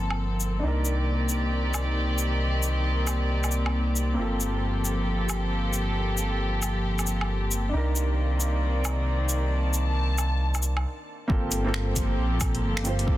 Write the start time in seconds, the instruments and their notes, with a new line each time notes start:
Already playing: detuned saw bass G1, string section F3 A#3 C4 A4, felt piano A#3 C4 F4 A4
0.10 low woodblock
0.40 cabasa
0.59 felt piano D4
0.63 detuned saw bass C2, string section D#3 G4 D5, felt piano D#4
0.68 felt piano A#4
0.85 cabasa
1.29 cabasa
1.74 cabasa, low woodblock
2.19 cabasa
2.63 cabasa
3.07 cabasa, low woodblock
3.44 cabasa, low woodblock
3.52 cabasa
3.66 low woodblock
3.96 cabasa
4.14 felt piano A#3 C4
4.18 detuned saw bass G1, string section F3 G4 A4, felt piano F4 A4
4.41 cabasa
4.85 cabasa
5.29 cabasa, low woodblock
5.74 cabasa
6.18 cabasa
6.62 cabasa, low woodblock
6.99 cabasa, low woodblock
7.07 cabasa
7.21 low woodblock
7.52 cabasa
7.69 felt piano D4
7.73 detuned saw bass C2, string section D#3 A#3 C4 D5, felt piano D#4 A#4
7.96 cabasa
8.40 cabasa
8.85 cabasa, low woodblock
9.29 cabasa
9.51 string section A5
9.74 cabasa
10.18 cabasa, low woodblock
10.55 cabasa, low woodblock
10.63 cabasa
10.77 low woodblock
11.28 detuned saw bass G1, string section F3 A#3 C4 G4 A4, felt piano A#3 C4 F4 A4, kick
11.52 closed hi-hat, cabasa
11.64 detuned saw bass G1, felt piano A#3 C4 F4 A4
11.74 finger snap
11.96 kick, closed hi-hat, cabasa
12.18 detuned saw bass A#1
12.41 kick, closed hi-hat, cabasa, low woodblock
12.55 closed hi-hat
12.63 detuned saw bass G1
12.77 finger snap
12.83 felt piano A#3 C4 F4, closed hi-hat, cabasa
12.87 felt piano C5
12.99 closed hi-hat
13.06 felt piano A#3 C4 F4, string section D5, kick
13.10 felt piano A4